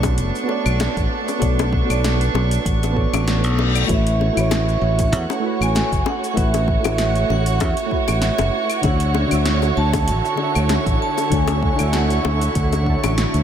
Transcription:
Already playing: fingered electric bass B1, string section A3 B3 D4, synth keys B3 F#4 A4 C#5 D5, synth texture C#6
0.03 kick, closed hi-hat, high bongo, shaker
0.18 fingered electric bass F#1, closed hi-hat, shaker
0.35 shaker
0.43 synth keys B3 F#4
0.48 synth keys A4 C#5 D5, high bongo
0.66 fingered electric bass B1, claves, shaker
0.80 snare, closed hi-hat, high bongo, shaker
0.96 fingered electric bass A1, kick, closed hi-hat, shaker
1.28 high bongo, shaker
1.39 fingered electric bass B1, synth keys B3 F#4 A4 C#5 D5, kick, closed hi-hat, shaker
1.59 closed hi-hat, high bongo, shaker
1.73 kick
1.85 synth keys B3 F#4
1.89 fingered electric bass B1, synth keys A4 C#5 D5, closed hi-hat, claves, shaker
2.04 snare, closed hi-hat, high bongo, shaker
2.21 closed hi-hat, shaker
2.34 fingered electric bass B1, high bongo
2.51 closed hi-hat, shaker
2.65 fingered electric bass A1, kick, closed hi-hat, reverse cymbal, shaker
2.83 closed hi-hat, high bongo, shaker
2.92 synth keys B3 F#4 A4
2.97 synth keys C#5 D5, kick
3.13 fingered electric bass A1, closed hi-hat, high bongo, claves, shaker
3.28 snare, closed hi-hat, shaker
3.44 fingered electric bass B1, closed hi-hat, shaker
3.59 high bongo
3.75 closed hi-hat, claves, shaker
3.87 fingered electric bass A1, synth keys A3 E4 F#4 B4 C#5, string section A3 F#4 C#5, synth texture C#6, kick, closed hi-hat, shaker
3.94 vibraphone E5
4.07 closed hi-hat, shaker
4.21 high bongo
4.33 synth keys A3 E4
4.37 fingered electric bass A1, synth keys F#4 B4 C#5, closed hi-hat, claves, shaker
4.51 vibraphone E5, snare, closed hi-hat, high bongo, shaker
4.68 shaker
4.81 fingered electric bass A1
4.99 kick, closed hi-hat, high bongo, shaker
5.12 fingered electric bass E2, vibraphone F#5, closed hi-hat, shaker
5.30 high bongo, shaker
5.40 synth keys A3 E4
5.44 synth keys F#4 B4
5.48 synth keys C#5
5.61 fingered electric bass A1, vibraphone G#5, claves, shaker
5.75 snare, closed hi-hat, high bongo, shaker
5.92 fingered electric bass F#1, kick, closed hi-hat, shaker
6.06 vibraphone F#5, high bongo
6.24 shaker
6.31 synth keys A3 E4, vibraphone F#5
6.36 fingered electric bass A1, synth keys F#4 B4 F#5, vibraphone E5, kick, closed hi-hat, shaker
6.54 closed hi-hat, high bongo, shaker
6.68 kick
6.80 synth keys A3 E4 F#4
6.84 fingered electric bass A1, synth keys B4 C#5, vibraphone E5, closed hi-hat, high bongo, claves, shaker
6.98 snare, closed hi-hat, shaker
7.16 closed hi-hat, shaker
7.30 fingered electric bass A1, vibraphone F#5, high bongo
7.46 closed hi-hat, shaker
7.55 vibraphone F#5
7.60 fingered electric bass E2, vibraphone E5, kick, closed hi-hat, high bongo, shaker
7.77 closed hi-hat, shaker
7.86 synth keys A3 E4 F#4
7.91 synth keys B4 F#5, kick
8.08 fingered electric bass A1, closed hi-hat, high bongo, claves, shaker
8.22 vibraphone E5, snare, closed hi-hat, shaker
8.38 fingered electric bass F#1, closed hi-hat, high bongo, shaker
8.70 closed hi-hat, claves, shaker
8.81 fingered electric bass D2, synth keys D3 D4 F#4 C#5 E5, string section D3 E4, vibraphone F#5, kick, closed hi-hat, high bongo, shaker
9.00 closed hi-hat, shaker
9.15 high bongo
9.27 synth keys D3 D4 F#4
9.31 fingered electric bass D2, synth keys C#5 E5, closed hi-hat, claves, shaker
9.46 snare, closed hi-hat, shaker
9.62 high bongo, shaker
9.77 fingered electric bass D2, vibraphone A5
9.93 kick, closed hi-hat, high bongo, shaker
10.08 fingered electric bass A1, vibraphone A5, closed hi-hat, shaker
10.25 shaker
10.35 synth keys D3 D4 F#4, high bongo
10.41 synth keys C#5 E5
10.55 fingered electric bass D2, claves, shaker
10.69 snare, closed hi-hat, high bongo, shaker
10.86 fingered electric bass A1, kick, closed hi-hat, shaker
11.02 vibraphone A5
11.18 high bongo, shaker
11.30 fingered electric bass D2, synth keys D3 D4 F#4 C#5, kick, closed hi-hat, shaker
11.34 synth keys A4, vibraphone G#5
11.47 closed hi-hat, high bongo, shaker
11.62 kick
11.75 synth keys D3 D4 F#4, closed hi-hat, claves
11.79 fingered electric bass D2, synth keys C#5 E5, shaker
11.93 vibraphone F#5, snare, closed hi-hat, high bongo, shaker
12.10 closed hi-hat, shaker
12.25 fingered electric bass D2, high bongo
12.41 closed hi-hat, shaker
12.55 fingered electric bass D2, kick, closed hi-hat, shaker
12.73 closed hi-hat, high bongo, shaker
12.82 synth keys D3 D4
12.86 synth keys F#4 C#5 A5, kick
13.04 fingered electric bass A1, closed hi-hat, high bongo, claves, shaker
13.18 snare, closed hi-hat, shaker
13.34 fingered electric bass D2, closed hi-hat, shaker

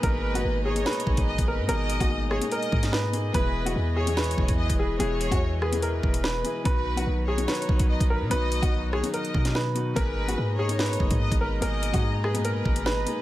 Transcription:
Already playing: felt piano A#2 B2 G#3 A#3 D#4 G#4, string section G#3 D#4 D#5 A#5
0.02 808-style bass G#1, felt piano B2 G#3 A#3 D#4 B4, upright piano A#4, violin section B4, kick, closed hi-hat
0.34 felt piano A#2 B2 G#3 D#4 G#4, upright piano F#4, closed hi-hat
0.45 808-style bass G#1
0.65 upright piano G#4, violin section C#5
0.75 felt piano B2 G#3 A#3 D#4 G#4, closed hi-hat
0.86 upright piano B4, snare, closed hi-hat
0.93 closed hi-hat
1.00 closed hi-hat
1.06 808-style bass G#1, felt piano A#2 B2 G#3 D#4 G#4, kick
1.17 808-style bass G#1, kick, closed hi-hat
1.28 violin section D#5
1.38 808-style bass G#1, kick, closed hi-hat
1.48 upright piano A#4, violin section B4
1.59 808-style bass G#2
1.68 808-style bass G#1, felt piano B2 G#3 A#3 D#4 G#4, upright piano A#4, violin section D#5, closed hi-hat
1.90 closed hi-hat
1.99 808-style bass G#1, felt piano B2 G#3 A#3 D#4 G#4, upright piano F#4, kick, closed hi-hat
2.31 upright piano G#4, violin section C#5, cross-stick
2.41 felt piano B2 G#3 A#3 D#4 G#4, closed hi-hat
2.51 upright piano A#4, violin section D#5, closed hi-hat
2.63 closed hi-hat
2.72 808-style bass G#2, kick
2.83 snare, closed hi-hat
2.93 upright piano B4, snare
3.12 felt piano B2 G#3 A#3 D#4 G#4, closed hi-hat
3.33 808-style bass E1, felt piano B2 E3 G#3 E4 G#4, string section E3 E4 G#4, violin section B4, upright piano B4, kick, closed hi-hat
3.65 felt piano B2 E3 G#3 E4 G#4, upright piano F#4, closed hi-hat
3.76 808-style bass E2
3.96 upright piano G#4, violin section C#5
4.06 felt piano B2 E3 G#3 E4 G#4, closed hi-hat
4.17 upright piano B4, snare, closed hi-hat
4.24 closed hi-hat
4.31 closed hi-hat
4.37 808-style bass D#1, felt piano B2 E3 G#3 E4 G#4, kick
4.48 808-style bass E2, kick, closed hi-hat
4.58 violin section D#5
4.69 808-style bass E1, kick, closed hi-hat
4.79 upright piano G#4, violin section B4
4.99 808-style bass E1, felt piano B2 E3 G#3 E4 G#4, upright piano G#4, violin section C#5, closed hi-hat
5.21 closed hi-hat
5.30 808-style bass E2, felt piano B2 E3 G#3 E4 G#4, upright piano F#4, kick, closed hi-hat
5.62 upright piano G#4, violin section B4, cross-stick
5.72 felt piano B2 E3 G#3 E4 G#4, closed hi-hat
5.82 upright piano A#4, closed hi-hat
6.03 808-style bass E1, kick
6.14 closed hi-hat
6.24 upright piano B4, snare
6.43 felt piano B2 E3 G#3 E4 G#4, closed hi-hat
6.64 808-style bass B1, felt piano B2 D#3 F#3 D#4 F#4, string section F#3 B3 D#4, upright piano B4, violin section B4, kick, closed hi-hat
6.96 felt piano B2 D#3 F#3 D#4 F#4, upright piano F#4, closed hi-hat
7.07 808-style bass B1
7.27 upright piano G#4, violin section C#5
7.37 felt piano B2 D#3 F#3 D#4 F#4, closed hi-hat
7.48 upright piano B4, snare, closed hi-hat
7.55 closed hi-hat
7.62 closed hi-hat
7.68 808-style bass B1, felt piano B2 D#3 F#3 D#4 F#4, kick
7.79 808-style bass B1, kick, closed hi-hat
7.90 violin section D#5
8.00 808-style bass B1, kick, closed hi-hat
8.10 upright piano A#4, violin section B4
8.21 808-style bass B2
8.30 808-style bass B1, felt piano B2 D#3 F#3 D#4 F#4, upright piano B4, violin section D#5, closed hi-hat
8.52 closed hi-hat
8.61 808-style bass B1, felt piano B2 D#3 F#3 D#4 F#4, upright piano F#4, kick, closed hi-hat
8.93 upright piano G#4, violin section C#5, cross-stick
9.03 felt piano B2 D#3 F#3 D#4 F#4, closed hi-hat
9.14 upright piano A#4, violin section D#5, closed hi-hat
9.25 closed hi-hat
9.34 808-style bass B2, kick
9.45 snare, closed hi-hat
9.55 upright piano B4, snare
9.75 felt piano B2 D#3 F#3 D#4 F#4, closed hi-hat
9.95 808-style bass G#1, felt piano B2 G#3 A#3 D#4 G#4, string section G#3 D#4 D#5 A#5, upright piano A#4, violin section B4, kick, closed hi-hat
10.27 felt piano A#2 B2 G#3 D#4 G#4, upright piano F#4, closed hi-hat
10.38 808-style bass G#2
10.58 upright piano G#4, violin section C#5
10.68 felt piano B2 G#3 A#3 D#4 G#4, closed hi-hat
10.79 upright piano B4, snare, closed hi-hat
10.86 closed hi-hat
10.93 closed hi-hat
10.99 808-style bass F#1, felt piano A#2 B2 G#3 D#4 G#4, kick
11.11 808-style bass G#2, kick, closed hi-hat
11.21 violin section D#5
11.32 808-style bass G#1, kick, closed hi-hat
11.41 upright piano A#4, violin section B4
11.61 808-style bass G#1, felt piano B2 G#3 A#3 D#4 G#4, upright piano A#4, violin section D#5, closed hi-hat
11.83 closed hi-hat
11.92 808-style bass G#2, felt piano B2 G#3 A#3 D#4 G#4, upright piano F#4, kick, closed hi-hat
12.24 upright piano G#4, violin section B4, cross-stick
12.34 felt piano A#2 B2 G#3 D#4 G#4, closed hi-hat
12.45 upright piano A#4, closed hi-hat
12.65 808-style bass G#1, kick
12.76 closed hi-hat
12.86 upright piano B4, snare
13.06 felt piano B2 G#3 A#3 D#4 G#4, closed hi-hat

